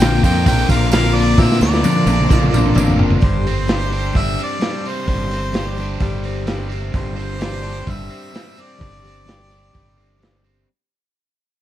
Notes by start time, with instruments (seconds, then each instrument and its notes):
Already playing: fingered electric bass A#1, overdriven electric guitar A#2, string section F4 C5 A#5 D6, harmonica G5
0.00 steel-string acoustic guitar A#2 D3 A#3 C4 F4 A#4, overdriven electric guitar D4, snare, open hi-hat
0.23 fingered electric bass F2, steel-string acoustic guitar A#3 C4 F4 A#4, overdriven electric guitar D4, harmonica G5, kick, open hi-hat, tambourine
0.45 fingered electric bass A#1, overdriven electric guitar A#2 D3 D4, steel-string acoustic guitar A#3 C4 F4 A#4, harmonica G5, kick, open hi-hat, tambourine
0.69 fingered electric bass A#1, steel-string acoustic guitar A#3 C4 F4 A#4, overdriven electric guitar D4, harmonica F5, kick, open hi-hat, tambourine
0.92 steel-string acoustic guitar A#2 D3 A#3 C4 F4 A#4, overdriven electric guitar D4, harmonica F5, snare, open hi-hat, tambourine
1.15 harmonica D5, open hi-hat
1.37 steel-string acoustic guitar A#2 D3 A#3 C4 F4 A#4, fingered electric bass A#2, overdriven electric guitar D4, harmonica E5, kick, snare, tambourine
1.52 snare
1.61 fingered electric bass D2, steel-string acoustic guitar A#3 C4 F4 A#4, overdriven electric guitar D4, harmonica D5, snare, tambourine
1.72 snare, tambourine
1.83 steel-string acoustic guitar A#2 D3 A#3 C4 F4 A#4, overdriven electric guitar D4, high tom, tambourine
1.95 high tom, tambourine
2.05 fingered electric bass A#1, steel-string acoustic guitar A#3 C4 F4 A#4, overdriven electric guitar D4, high tom, tambourine
2.20 mid tom
2.28 fingered electric bass A#1, overdriven electric guitar A#2 D3 D4, steel-string acoustic guitar A#3 C4 F4 A#4, kick, mid tom, tambourine
2.42 mid tom, tambourine
2.51 fingered electric bass A#1, steel-string acoustic guitar A#3 C4 F4 A#4, overdriven electric guitar D4, mid tom, tambourine
2.66 mid tom
2.74 fingered electric bass A1, steel-string acoustic guitar A#2 D3 A#3 C4 F4 A#4, overdriven electric guitar D4, mid tom
2.78 tambourine
2.88 floor tom, tambourine
2.99 fingered electric bass G1, floor tom
3.10 floor tom
3.20 fingered electric bass G1, overdriven electric guitar G2, steel-string acoustic guitar G3 D4 G4 C5, harmonica C5, kick, open hi-hat
3.43 steel-string acoustic guitar D4 G4 C5, open hi-hat
3.47 overdriven electric guitar C4
3.66 steel-string acoustic guitar G3 D4 G4 C5, snare, open hi-hat
3.90 overdriven electric guitar D4, steel-string acoustic guitar G4 C5, open hi-hat
4.13 fingered electric bass G1, steel-string acoustic guitar G3 D4 G4 C5, kick, open hi-hat
4.18 harmonica E5
4.38 overdriven electric guitar C4, open hi-hat
4.43 harmonica D5
4.59 steel-string acoustic guitar G3 D4 G4 C5, snare, open hi-hat
4.84 overdriven electric guitar C4, steel-string acoustic guitar D4 G4 C5, open hi-hat
4.88 harmonica C5
5.06 fingered electric bass G1, overdriven electric guitar G2, steel-string acoustic guitar G3 D4 G4 C5, kick, open hi-hat
5.30 overdriven electric guitar C4, steel-string acoustic guitar D4 G4 C5, open hi-hat
5.52 steel-string acoustic guitar G3 D4 G4 C5, snare, open hi-hat
5.77 steel-string acoustic guitar D4 G4 C5, open hi-hat
6.00 fingered electric bass G1, steel-string acoustic guitar G3 D4 G4 C5, kick, open hi-hat
6.24 overdriven electric guitar C4, open hi-hat
6.46 steel-string acoustic guitar G3 D4 G4 C5, snare, open hi-hat
6.70 overdriven electric guitar C4, steel-string acoustic guitar G4 C5, open hi-hat
6.74 steel-string acoustic guitar D4
6.93 fingered electric bass G1, overdriven electric guitar G2, steel-string acoustic guitar G3 D4 G4 C5, harmonica C5, kick, open hi-hat
7.16 overdriven electric guitar C4, steel-string acoustic guitar D4 G4 C5, open hi-hat
7.40 steel-string acoustic guitar G3 D4 G4 C5, snare, open hi-hat
7.62 steel-string acoustic guitar D4 G4 C5, open hi-hat
7.87 fingered electric bass G1, steel-string acoustic guitar G3 D4 G4 C5, kick, open hi-hat
7.91 harmonica E5
8.10 overdriven electric guitar C4, open hi-hat
8.32 steel-string acoustic guitar G3 D4 G4 C5, snare, open hi-hat
8.56 overdriven electric guitar C4, steel-string acoustic guitar D4 G4 C5, open hi-hat
8.61 harmonica D5
8.78 fingered electric bass G1, overdriven electric guitar G2, steel-string acoustic guitar G3 D4 G4 C5, kick, open hi-hat
9.02 overdriven electric guitar C4, steel-string acoustic guitar D4 G4 C5, open hi-hat
9.25 steel-string acoustic guitar G3 D4 G4 C5, open hi-hat
9.29 snare
9.49 steel-string acoustic guitar D4 G4 C5, open hi-hat
9.72 fingered electric bass G1, steel-string acoustic guitar G3 D4 G4 C5, kick, open hi-hat
9.97 overdriven electric guitar C4, open hi-hat
10.18 steel-string acoustic guitar G3 D4 G4 C5
10.22 snare, open hi-hat
10.41 overdriven electric guitar C4, steel-string acoustic guitar D4 G4 C5
10.46 open hi-hat